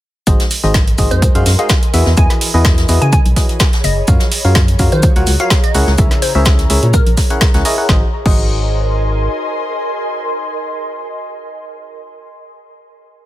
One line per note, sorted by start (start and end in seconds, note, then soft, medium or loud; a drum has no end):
0.27 0.37 G#1 loud
0.27 0.44 G#3 medium
0.27 0.44 D#4 medium
0.27 0.44 F#4 medium
0.27 0.44 G#4 medium
0.27 1.94 A#4 medium
0.27 0.44 C5 medium
0.27 0.44 D#5 medium
0.27 kick loud
0.27 closed hi-hat medium
0.27 shaker medium
0.40 snare medium
0.40 closed hi-hat soft
0.44 1.94 C6 medium
0.51 open hi-hat loud
0.51 shaker medium
0.62 0.94 G#1 loud
0.62 0.79 G#3 medium
0.62 0.79 D#4 medium
0.62 0.79 F#4 medium
0.62 0.79 G#4 medium
0.62 0.79 C5 medium
0.62 2.70 D#5 medium
0.62 0.79 D#5 medium
0.62 2.70 G#5 medium
0.62 closed hi-hat soft
0.74 kick loud
0.74 snare loud
0.74 closed hi-hat medium
0.74 shaker medium
0.88 closed hi-hat medium
0.98 1.08 G#1 loud
0.98 1.32 G#3 medium
0.98 1.32 D#4 medium
0.98 1.32 F#4 medium
0.98 1.32 G#4 medium
0.98 1.32 C5 medium
0.98 1.32 D#5 medium
0.98 kick medium
0.98 open hi-hat medium
0.98 shaker medium
1.11 1.29 F2 medium
1.11 1.27 C5 medium
1.11 closed hi-hat soft
1.22 kick loud
1.22 closed hi-hat medium
1.22 shaker medium
1.35 1.44 F#2 medium
1.35 1.51 G#3 medium
1.35 1.51 D#4 medium
1.35 1.51 F#4 medium
1.35 1.51 G#4 medium
1.35 1.51 C5 medium
1.35 1.51 F5 loud
1.35 closed hi-hat medium
1.46 1.56 F#2 medium
1.46 snare soft
1.46 open hi-hat loud
1.46 shaker medium
1.59 1.74 G#3 medium
1.59 1.74 D#4 medium
1.59 1.74 F#4 medium
1.59 1.74 G#4 medium
1.59 1.74 C5 medium
1.59 1.74 D#5 medium
1.59 1.75 F5 medium
1.59 closed hi-hat soft
1.69 kick loud
1.69 snare loud
1.69 closed hi-hat medium
1.69 shaker medium
1.83 closed hi-hat medium
1.94 2.04 E2 medium
1.94 2.10 E3 medium
1.94 2.10 E4 medium
1.94 2.10 F#4 medium
1.94 7.89 G#4 medium
1.94 2.10 G#4 medium
1.94 2.10 B4 medium
1.94 2.10 E5 loud
1.94 open hi-hat medium
1.94 shaker medium
2.06 2.15 E2 loud
2.06 snare soft
2.17 2.27 E2 medium
2.17 2.51 E3 medium
2.17 2.51 E4 medium
2.17 2.51 F#4 medium
2.17 2.51 G#4 medium
2.17 2.51 B4 medium
2.17 2.51 D#5 medium
2.17 2.34 G#5 medium
2.17 kick loud
2.17 closed hi-hat medium
2.17 shaker medium
2.30 7.89 C#5 medium
2.30 snare soft
2.30 closed hi-hat soft
2.41 open hi-hat loud
2.41 shaker medium
2.54 2.85 E2 loud
2.54 2.86 E3 medium
2.54 2.86 E4 medium
2.54 2.86 F#4 medium
2.54 2.86 G#4 medium
2.54 2.86 B4 medium
2.54 2.86 D#5 loud
2.65 kick loud
2.65 snare loud
2.65 closed hi-hat medium
2.65 shaker medium
2.78 3.84 B5 medium
2.78 snare soft
2.78 closed hi-hat soft
2.89 2.99 E2 loud
2.89 3.06 E3 medium
2.89 3.06 E4 medium
2.89 3.06 F#4 medium
2.89 3.06 G#4 medium
2.89 3.06 B4 medium
2.89 3.06 D#5 medium
2.89 open hi-hat medium
2.89 shaker medium
3.02 3.20 C#3 medium
3.02 3.09 G#5 medium
3.02 closed hi-hat soft
3.13 3.21 G#5 medium
3.13 kick loud
3.13 closed hi-hat medium
3.13 shaker medium
3.26 3.34 B1 medium
3.26 closed hi-hat medium
3.36 3.62 E3 medium
3.36 3.62 E4 medium
3.36 3.62 F#4 medium
3.36 3.62 G#4 medium
3.36 3.62 B4 medium
3.36 3.62 D#5 medium
3.36 kick medium
3.36 snare soft
3.36 open hi-hat loud
3.36 shaker medium
3.49 closed hi-hat soft
3.60 kick loud
3.60 snare loud
3.60 closed hi-hat medium
3.60 shaker medium
3.73 snare medium
3.73 closed hi-hat soft
3.84 4.03 F#1 medium
3.84 4.21 D#5 medium
3.84 open hi-hat medium
3.84 shaker medium
4.08 4.18 F#2 loud
4.08 4.25 F#3 medium
4.08 4.25 F4 medium
4.08 4.25 F#4 medium
4.08 4.25 A#4 medium
4.08 4.25 C#5 medium
4.08 4.25 F5 medium
4.08 kick loud
4.08 closed hi-hat medium
4.08 shaker medium
4.20 snare medium
4.20 closed hi-hat medium
4.32 open hi-hat loud
4.32 shaker medium
4.44 4.75 F#2 loud
4.44 4.60 F#3 medium
4.44 4.60 F4 medium
4.44 4.60 F#4 medium
4.44 4.60 A#4 medium
4.44 4.60 C#5 medium
4.44 4.60 F5 medium
4.44 closed hi-hat soft
4.49 7.89 A#5 medium
4.55 kick loud
4.55 snare loud
4.55 closed hi-hat medium
4.55 shaker medium
4.68 closed hi-hat soft
4.79 4.89 F#2 loud
4.79 5.13 F#3 medium
4.79 5.13 F4 medium
4.79 5.13 F#4 medium
4.79 5.13 A#4 medium
4.79 5.13 C#5 medium
4.79 5.13 F5 medium
4.79 kick medium
4.79 open hi-hat medium
4.79 shaker medium
4.92 5.10 D#3 medium
4.92 5.08 C5 medium
4.92 closed hi-hat soft
5.03 kick loud
5.03 closed hi-hat medium
5.03 shaker medium
5.16 5.25 C#2 medium
5.16 5.32 F#3 medium
5.16 5.32 F4 medium
5.16 5.32 F#4 medium
5.16 5.32 A#4 medium
5.16 5.32 C#5 medium
5.16 5.32 F#5 loud
5.16 closed hi-hat soft
5.26 5.37 C#2 loud
5.26 snare soft
5.26 open hi-hat loud
5.26 shaker medium
5.40 5.55 F#3 medium
5.40 5.55 F4 medium
5.40 5.55 F#4 medium
5.40 5.55 A#4 medium
5.40 5.55 C#5 medium
5.40 5.55 F5 medium
5.40 5.56 F5 medium
5.40 closed hi-hat soft
5.50 kick loud
5.50 snare loud
5.50 closed hi-hat medium
5.50 shaker medium
5.64 5.79 D#5 medium
5.64 closed hi-hat medium
5.75 5.85 C#2 medium
5.75 5.91 C#3 medium
5.75 5.91 E4 medium
5.75 5.91 G#4 medium
5.75 5.91 A#4 medium
5.75 5.91 C#5 medium
5.75 5.91 F#5 loud
5.75 open hi-hat medium
5.75 shaker medium
5.87 5.96 C#2 loud
5.87 snare soft
5.98 6.08 C#2 loud
5.98 6.32 C#3 medium
5.98 6.32 E4 medium
5.98 6.32 G#4 medium
5.98 6.32 A#4 medium
5.98 6.32 C#5 medium
5.98 6.32 E5 medium
5.98 kick loud
5.98 closed hi-hat medium
5.98 shaker medium
6.11 snare soft
6.11 closed hi-hat soft
6.22 6.30 C5 medium
6.22 open hi-hat loud
6.22 shaker medium
6.35 6.66 C#2 loud
6.35 6.67 C#3 loud
6.35 6.67 E4 medium
6.35 6.67 G#4 medium
6.35 6.67 A#4 medium
6.35 6.42 C5 medium
6.35 6.67 C#5 medium
6.35 6.67 E5 loud
6.45 kick loud
6.45 snare loud
6.45 closed hi-hat medium
6.45 shaker medium
6.59 snare soft
6.59 closed hi-hat soft
6.70 6.80 C#2 loud
6.70 6.87 C#3 medium
6.70 6.87 E4 medium
6.70 6.87 G#4 medium
6.70 6.87 A#4 medium
6.70 6.87 C#5 medium
6.70 6.87 E5 medium
6.70 open hi-hat loud
6.70 shaker medium
6.83 7.01 A#2 medium
6.83 closed hi-hat soft
6.94 7.61 A#4 medium
6.94 kick loud
6.94 closed hi-hat medium
6.94 shaker medium
7.07 7.15 A#1 medium
7.07 closed hi-hat soft
7.17 kick medium
7.17 snare soft
7.17 open hi-hat loud
7.17 shaker medium
7.30 7.46 C#3 medium
7.30 7.46 E4 medium
7.30 7.46 G#4 medium
7.30 7.46 A#4 medium
7.30 7.46 C#5 medium
7.30 7.46 F#5 loud
7.30 closed hi-hat soft
7.41 kick loud
7.41 snare loud
7.41 closed hi-hat medium
7.41 shaker medium
7.54 7.63 C#2 medium
7.54 7.63 C#3 medium
7.54 7.63 E4 medium
7.54 7.63 G#4 medium
7.54 7.63 A#4 medium
7.54 7.63 C#5 medium
7.54 7.63 F#5 medium
7.54 snare medium
7.54 closed hi-hat soft
7.65 7.75 E4 loud
7.65 7.75 G#4 medium
7.65 7.75 A#4 medium
7.65 7.75 C#5 medium
7.65 7.75 D#5 loud
7.65 open hi-hat medium
7.65 shaker medium
7.78 7.87 E4 medium
7.78 7.87 G#4 medium
7.78 7.87 A#4 medium
7.78 7.87 C#5 medium
7.78 7.87 F#5 medium
7.89 8.03 G#1 medium
7.89 8.03 D#4 medium
7.89 8.03 F#4 medium
7.89 8.03 G#4 medium
7.89 11.90 A#4 medium
7.89 8.03 D#5 medium
7.89 kick loud
7.89 snare medium
7.97 11.98 D#5 medium
8.04 12.05 G#5 medium
8.11 12.12 C6 medium
8.26 9.28 G#1 loud
8.26 12.27 D#4 medium
8.26 12.27 F#4 medium
8.26 12.27 G#4 medium
8.26 12.27 C5 medium
8.26 12.27 D#5 medium
8.26 kick loud
8.26 crash medium